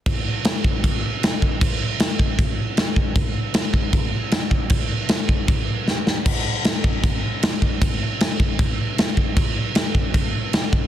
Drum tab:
CC |x-x-x-x-|x-x-x-x-|x-x-x-x-|x-x-x---|
SD |--o---o-|--o---o-|--o---o-|--o---oo|
BD |o--oo--o|o--oo--o|o--oo--o|o--oo---|

CC |x-x-x-x-|x-x-x-x-|x-x-x-x-|
SD |--o---o-|--o---o-|--o---o-|
BD |o--oo--o|o--oo--o|o--oo--o|